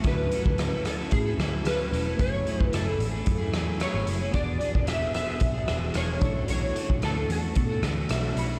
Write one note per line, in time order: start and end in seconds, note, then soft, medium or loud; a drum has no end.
0.01 0.26 D2 loud
0.01 0.32 D3 medium
0.01 2.14 A3 medium
0.01 2.15 C#4 soft
0.01 2.16 E4 soft
0.01 kick medium
0.01 closed hi-hat medium
0.05 0.30 F#3 medium
0.05 0.32 C#4 medium
0.05 0.33 E4 medium
0.05 2.16 F#4 medium
0.05 0.33 A4 medium
0.05 0.89 B4 medium
0.31 0.57 F#3 medium
0.31 0.58 C#4 medium
0.31 0.58 E4 medium
0.31 closed hi-hat soft
0.35 0.59 A4 medium
0.46 1.09 D2 medium
0.46 kick medium
0.58 0.72 D3 medium
0.58 0.72 F#3 medium
0.58 0.72 C#4 medium
0.58 0.72 E4 medium
0.58 0.71 A4 medium
0.58 cross-stick medium
0.58 closed hi-hat medium
0.72 1.01 C#4 soft
0.72 1.00 E4 soft
0.72 0.97 A4 soft
0.85 0.94 A4 medium
0.85 cross-stick medium
0.85 closed hi-hat medium
0.99 1.26 E4 soft
0.99 1.24 A4 soft
1.03 1.28 C#4 soft
1.11 1.34 A2 medium
1.11 1.68 G#4 medium
1.11 kick medium
1.11 closed hi-hat medium
1.25 1.40 E4 soft
1.25 1.39 A4 soft
1.29 1.39 C#4 soft
1.38 1.60 D2 medium
1.38 1.65 F#3 medium
1.38 1.66 C#4 medium
1.38 1.67 E4 medium
1.38 1.67 A4 medium
1.38 cross-stick medium
1.38 closed hi-hat soft
1.65 1.94 D2 medium
1.65 1.93 D3 medium
1.65 1.91 F#3 medium
1.65 1.92 C#4 medium
1.65 1.93 E4 medium
1.65 1.94 A4 medium
1.65 2.20 B4 medium
1.65 cross-stick medium
1.65 closed hi-hat medium
1.92 2.14 E1 medium
1.92 2.06 F#3 medium
1.92 2.06 C#4 medium
1.92 2.06 E4 medium
1.92 2.03 A4 medium
1.92 closed hi-hat soft
2.04 2.19 C#4 soft
2.04 2.19 E4 soft
2.04 2.19 A4 medium
2.16 2.41 F#1 medium
2.16 2.44 F#3 medium
2.16 4.29 A3 soft
2.16 2.45 A3 medium
2.16 4.29 C#4 soft
2.16 4.30 E4 medium
2.16 kick medium
2.16 closed hi-hat medium
2.20 2.47 E4 medium
2.20 2.47 G#4 medium
2.20 2.64 C#5 medium
2.20 4.31 G#5 medium
2.45 2.71 F#3 medium
2.45 2.72 A3 medium
2.45 2.73 E4 medium
2.45 2.74 G#4 medium
2.45 closed hi-hat soft
2.61 2.71 F#1 medium
2.61 2.76 B4 medium
2.61 kick medium
2.72 2.94 F#1 medium
2.72 2.86 F#3 medium
2.72 2.87 A3 medium
2.72 2.86 E4 medium
2.72 2.83 G#4 medium
2.72 3.85 A4 medium
2.72 cross-stick medium
2.72 closed hi-hat medium
2.84 3.14 A3 soft
2.84 3.13 E4 soft
2.84 3.10 G#4 soft
2.99 3.21 A1 medium
2.99 closed hi-hat soft
3.11 3.39 E4 soft
3.11 3.37 G#4 soft
3.16 3.41 A3 soft
3.26 3.49 F#2 medium
3.26 kick medium
3.26 closed hi-hat medium
3.38 3.54 E4 soft
3.38 3.53 G#4 medium
3.42 3.53 A3 soft
3.52 3.85 E2 medium
3.52 3.77 F#3 medium
3.52 3.79 A3 medium
3.52 3.80 E4 medium
3.52 cross-stick medium
3.52 closed hi-hat soft
3.56 3.81 G#4 medium
3.78 4.05 F#3 medium
3.78 4.07 A3 medium
3.78 4.08 E4 medium
3.78 4.08 G#4 medium
3.78 4.34 C#5 medium
3.78 cross-stick medium
3.78 closed hi-hat medium
3.94 4.05 G#1 medium
4.07 4.29 F#1 medium
4.07 4.21 F#3 medium
4.07 4.22 A3 soft
4.07 4.21 E4 medium
4.07 4.18 G#4 medium
4.07 closed hi-hat soft
4.19 4.34 E4 soft
4.19 4.34 G#4 soft
4.24 4.33 A3 soft
4.31 4.56 E1 medium
4.31 4.58 E3 medium
4.31 6.17 B3 medium
4.31 4.59 B3 medium
4.31 6.18 D4 soft
4.31 4.61 D4 medium
4.31 6.19 F#4 soft
4.31 4.87 D5 medium
4.31 kick medium
4.31 closed hi-hat medium
4.35 4.62 G#4 medium
4.35 6.20 G#4 medium
4.59 4.85 E3 soft
4.59 4.87 B3 medium
4.59 4.87 D4 medium
4.59 4.88 G#4 medium
4.59 closed hi-hat soft
4.75 5.39 E1 medium
4.75 kick medium
4.86 5.01 E3 medium
4.86 5.01 B3 medium
4.86 5.02 D4 medium
4.86 4.99 G#4 medium
4.86 5.14 E5 medium
4.86 cross-stick medium
4.86 closed hi-hat medium
5.00 5.27 D4 soft
5.00 5.25 G#4 soft
5.05 5.29 B3 soft
5.14 5.92 E5 medium
5.14 cross-stick medium
5.14 closed hi-hat medium
5.26 5.55 D4 soft
5.26 5.52 G#4 soft
5.30 5.56 B3 soft
5.40 5.70 B1 medium
5.40 kick medium
5.40 closed hi-hat medium
5.54 5.67 B3 soft
5.54 5.68 D4 soft
5.54 5.68 G#4 medium
5.66 5.90 E1 medium
5.66 5.93 E3 medium
5.66 5.93 B3 medium
5.66 5.94 D4 medium
5.66 cross-stick medium
5.66 closed hi-hat soft
5.70 5.95 G#4 medium
5.94 6.17 E1 medium
5.94 6.20 E3 medium
5.94 6.22 B3 medium
5.94 6.23 D4 medium
5.94 6.23 G#4 medium
5.94 6.47 C#5 medium
5.94 cross-stick medium
5.94 closed hi-hat medium
6.19 6.43 B1 medium
6.19 6.35 E3 soft
6.19 6.36 A3 medium
6.19 8.31 C#4 medium
6.19 8.32 D4 medium
6.19 8.33 E4 medium
6.19 kick loud
6.19 closed hi-hat soft
6.24 6.36 D4 soft
6.24 6.33 F#4 medium
6.24 8.34 A4 medium
6.34 6.50 D4 soft
6.34 6.49 F#4 soft
6.39 6.50 A3 soft
6.48 6.70 B1 medium
6.48 6.76 B2 medium
6.48 6.73 E3 medium
6.48 6.75 A3 medium
6.48 6.75 D4 medium
6.48 6.77 F#4 medium
6.48 7.05 C#5 medium
6.48 closed hi-hat medium
6.74 7.01 E3 medium
6.74 7.02 A3 medium
6.74 7.03 D4 medium
6.74 closed hi-hat soft
6.78 7.03 F#4 medium
6.90 7.01 B1 medium
6.90 kick medium
7.02 7.24 D2 medium
7.02 7.16 B2 medium
7.02 7.16 E3 medium
7.02 7.16 A3 medium
7.02 7.16 D4 medium
7.02 7.14 F#4 medium
7.02 7.31 A4 medium
7.02 cross-stick medium
7.02 closed hi-hat medium
7.15 7.44 A3 soft
7.15 7.43 D4 soft
7.15 7.41 F#4 soft
7.30 7.51 E2 medium
7.30 8.34 A4 medium
7.30 closed hi-hat soft
7.42 7.69 D4 soft
7.42 7.68 F#4 soft
7.46 7.71 A3 soft
7.55 7.84 B2 medium
7.55 kick medium
7.55 closed hi-hat medium
7.69 7.82 A3 soft
7.69 7.84 D4 soft
7.69 7.83 F#4 soft
7.82 8.04 D2 medium
7.82 8.08 E3 medium
7.82 8.10 A3 medium
7.82 8.10 D4 medium
7.82 cross-stick medium
7.82 closed hi-hat soft
7.86 8.11 F#4 medium
8.09 8.31 B1 medium
8.09 8.36 B2 medium
8.09 8.33 E3 medium
8.09 8.35 A3 medium
8.09 8.35 D4 medium
8.09 8.37 F#4 medium
8.09 8.35 E5 medium
8.09 cross-stick medium
8.09 closed hi-hat medium
8.34 8.58 B1 medium
8.34 8.49 E3 medium
8.34 8.50 A3 medium
8.34 8.49 D4 medium
8.34 8.46 F#4 medium
8.34 closed hi-hat soft
8.39 8.59 B5 medium
8.47 8.59 A3 soft
8.47 8.59 D4 soft
8.47 8.59 F#4 medium